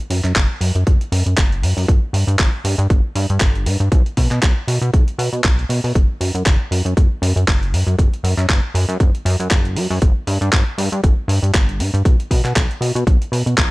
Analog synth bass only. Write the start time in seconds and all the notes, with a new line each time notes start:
0.10 F#2
0.24 F#2
0.36 F#1
0.61 F#2
0.75 F#2
0.87 F#1
1.12 F#2
1.26 F#2
1.37 F#1
1.62 F#2
1.77 F#2
1.88 G1
2.13 G2
2.27 G2
2.39 G1
2.64 G2
2.78 G2
2.90 G1
3.15 G2
3.30 G2
3.41 G1
3.66 G2
3.80 G2
3.92 B1
4.17 B2
4.31 B2
4.43 B1
4.68 B2
4.82 B2
4.93 B1
5.18 B2
5.33 B2
5.44 B1
5.69 B2
5.84 B2
5.95 F#1
6.21 F#2
6.34 F#2
6.46 F#1
6.71 F#2
6.85 F#2
6.97 F#1
7.22 F#2
7.36 F#2
7.48 F#1
7.72 F#2
7.87 F#2
7.98 F#1
8.23 F#2
8.37 F#2
8.49 F#1
8.74 F#2
8.89 F#2
9.00 F#1
9.25 F#2
9.39 F#2
9.51 F#1
9.76 F#2
9.90 F#2
10.02 G1
10.27 G2
10.41 G2
10.53 G1
10.78 G2
10.92 G2
11.03 G1
11.28 G2
11.43 G2
11.54 G1
11.79 G2
11.94 G2
12.05 B1
12.31 B2
12.44 B2
12.56 B1
12.81 B2
12.95 B2
13.07 B1
13.32 B2
13.46 B2
13.58 B1